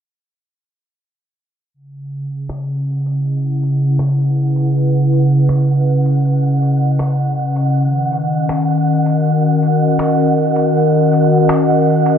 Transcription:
1.74 7.74 C#3 medium
1.74 12.18 F#5 medium
2.41 12.18 C#4 medium
2.49 finger snap medium
2.72 12.18 D#5 medium
2.99 7.74 E4 medium
3.95 7.74 B4 medium
3.95 finger snap medium
5.49 finger snap medium
6.99 finger snap medium
7.74 12.18 D#3 medium
8.49 finger snap medium
8.71 12.18 A#4 medium
8.89 12.18 F#4 medium
9.99 finger snap medium
11.49 finger snap medium

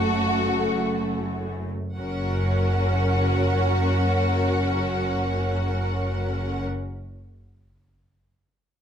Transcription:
0.00 1.68 F#1 soft
0.00 1.68 F#2 soft
0.00 1.72 A3 soft
0.00 1.51 F#4 medium
0.00 1.25 A4 soft
1.98 6.64 F#1 soft
1.98 6.65 F#2 medium
1.98 6.65 C#4 soft
1.98 6.65 F#4 medium
1.98 6.65 A#4 soft
1.98 6.65 F#5 soft

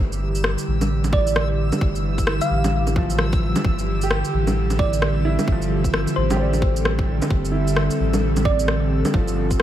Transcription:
0.00 0.56 G1 loud
0.00 9.62 D3 loud
0.00 9.62 E3 medium
0.00 9.62 G3 medium
0.00 0.11 G4 medium
0.00 9.62 G4 medium
0.00 3.67 A#4 medium
0.00 9.62 E6 medium
0.12 shaker soft
0.35 shaker medium
0.44 cross-stick loud
0.58 shaker soft
0.67 1.71 A1 medium
0.81 low bongo medium
0.81 shaker medium
1.04 low bongo soft
1.04 shaker soft
1.13 1.37 D5 medium
1.13 kick loud
1.27 shaker medium
1.36 cross-stick loud
1.72 low bongo medium
1.72 shaker medium
1.81 2.39 G1 loud
1.81 kick loud
1.95 shaker soft
2.18 kick medium
2.18 shaker medium
2.27 cross-stick loud
2.41 2.73 F5 medium
2.41 shaker soft
2.50 3.54 A1 medium
2.64 low bongo medium
2.64 shaker medium
2.87 low bongo soft
2.87 shaker soft
2.96 3.83 F3 medium
2.96 kick loud
3.10 shaker medium
3.18 cross-stick loud
3.33 kick loud
3.33 shaker soft
3.56 low bongo medium
3.56 shaker medium
3.64 4.23 G1 loud
3.64 kick loud
3.79 shaker soft
3.97 9.62 A4 medium
4.02 5.30 G4 medium
4.02 shaker medium
4.11 cross-stick loud
4.25 shaker soft
4.33 5.37 A1 medium
4.47 low bongo medium
4.47 shaker medium
4.62 9.62 C4 loud
4.70 low bongo soft
4.70 shaker soft
4.79 5.03 D5 medium
4.79 kick loud
4.93 shaker medium
5.02 cross-stick loud
5.25 6.53 E4 medium
5.39 low bongo medium
5.39 shaker medium
5.48 6.06 G1 loud
5.48 kick loud
5.52 6.78 F3 medium
5.62 shaker soft
5.84 kick medium
5.84 shaker medium
5.94 cross-stick loud
6.08 shaker soft
6.16 7.20 A1 medium
6.16 6.62 C5 medium
6.30 7.57 G4 medium
6.30 low bongo medium
6.30 shaker medium
6.36 7.59 C5 medium
6.41 7.62 D5 medium
6.54 low bongo soft
6.54 shaker soft
6.62 kick loud
6.76 shaker medium
6.85 cross-stick loud
6.99 kick loud
7.22 low bongo medium
7.22 shaker medium
7.30 7.89 G1 loud
7.30 kick loud
7.45 shaker soft
7.52 8.79 E4 medium
7.68 shaker medium
7.76 cross-stick loud
7.91 shaker soft
8.00 9.04 A1 medium
8.14 low bongo medium
8.14 shaker medium
8.37 low bongo soft
8.37 shaker soft
8.45 8.70 D5 loud
8.45 kick loud
8.59 shaker medium
8.68 cross-stick loud
9.05 low bongo medium
9.05 shaker medium
9.14 9.62 G1 loud
9.14 9.62 F3 medium
9.14 kick loud
9.28 shaker soft
9.51 kick medium
9.51 shaker medium

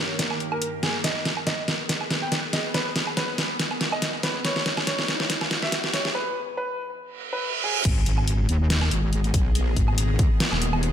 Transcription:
0.00 1.01 G2 medium
0.00 4.41 D#3 medium
0.00 1.01 A#3 medium
0.00 1.01 G4 medium
0.00 1.01 A#4 medium
0.19 snare medium
0.19 closed hi-hat medium
0.31 low woodblock medium
0.40 closed hi-hat medium
0.52 0.69 A#4 medium
0.52 low woodblock medium
0.62 closed hi-hat medium
0.83 0.95 G#4 medium
0.83 snare medium
0.83 closed hi-hat soft
1.04 6.11 B3 medium
1.04 4.41 G#4 medium
1.04 6.11 B4 medium
1.04 1.27 D#5 medium
1.04 snare medium
1.04 closed hi-hat medium
1.04 riser medium
1.25 snare medium
1.25 closed hi-hat soft
1.37 low woodblock medium
1.47 1.70 D#5 medium
1.47 snare medium
1.47 closed hi-hat medium
1.68 snare medium
1.68 closed hi-hat soft
1.89 snare medium
1.89 closed hi-hat medium
2.01 low woodblock medium
2.11 snare medium
2.11 closed hi-hat medium
2.22 2.39 G5 medium
2.32 snare medium
2.32 closed hi-hat medium
2.53 2.65 D#5 medium
2.53 snare medium
2.53 open hi-hat medium
2.74 2.98 B4 medium
2.74 snare medium
2.74 closed hi-hat medium
2.96 snare medium
2.96 closed hi-hat medium
3.07 low woodblock medium
3.17 3.40 B4 loud
3.17 snare medium
3.17 closed hi-hat medium
3.38 snare medium
3.38 closed hi-hat medium
3.59 snare medium
3.59 closed hi-hat medium
3.71 low woodblock medium
3.81 snare medium
3.81 closed hi-hat medium
3.92 4.09 D#5 medium
3.92 low woodblock medium
4.02 snare medium
4.02 closed hi-hat medium
4.23 4.36 B4 medium
4.23 snare medium
4.23 open hi-hat medium
4.45 6.13 G#2 medium
4.45 6.13 E3 medium
4.45 6.13 G#4 medium
4.45 4.68 C#5 loud
4.45 snare medium
4.45 closed hi-hat medium
4.56 snare medium
4.66 snare medium
4.66 closed hi-hat medium
4.77 snare medium
4.77 low woodblock medium
4.87 5.10 C#5 loud
4.87 snare loud
4.87 closed hi-hat medium
4.99 snare medium
5.08 snare loud
5.08 closed hi-hat medium
5.20 snare medium
5.30 snare loud
5.30 closed hi-hat medium
5.41 snare medium
5.41 low woodblock medium
5.51 snare loud
5.51 closed hi-hat medium
5.63 5.79 E5 medium
5.63 snare medium
5.72 snare loud
5.72 closed hi-hat medium
5.84 snare medium
5.94 6.06 C#5 medium
5.94 snare loud
5.94 open hi-hat loud
6.05 snare medium
6.15 6.38 B4 loud
6.57 6.80 B4 medium
7.00 reverse cymbal medium
7.33 7.50 B4 loud
7.64 7.76 G#4 medium
7.85 8.05 G#1 loud
7.85 10.93 D#3 medium
7.85 10.93 B3 medium
7.85 10.93 G#4 medium
7.85 10.93 D#5 medium
7.85 kick loud
7.85 closed hi-hat medium
7.85 crash loud
7.85 sub drop medium
8.06 8.47 G#1 loud
8.06 closed hi-hat medium
8.18 low woodblock medium
8.28 closed hi-hat medium
8.49 8.90 D#2 medium
8.49 closed hi-hat medium
8.70 snare loud
8.70 closed hi-hat medium
8.82 low woodblock medium
8.91 9.32 G#1 loud
8.91 closed hi-hat medium
9.13 closed hi-hat medium
9.24 closed hi-hat soft
9.34 9.75 B1 loud
9.34 kick loud
9.34 open hi-hat medium
9.55 closed hi-hat medium
9.76 10.18 G#1 medium
9.76 kick medium
9.76 closed hi-hat medium
9.88 low woodblock soft
9.98 closed hi-hat medium
10.19 10.29 D#2 loud
10.19 kick loud
10.19 closed hi-hat medium
10.40 snare loud
10.40 closed hi-hat medium
10.52 10.93 D#1 loud
10.52 low woodblock medium
10.62 closed hi-hat medium
10.73 low woodblock medium
10.83 closed hi-hat medium

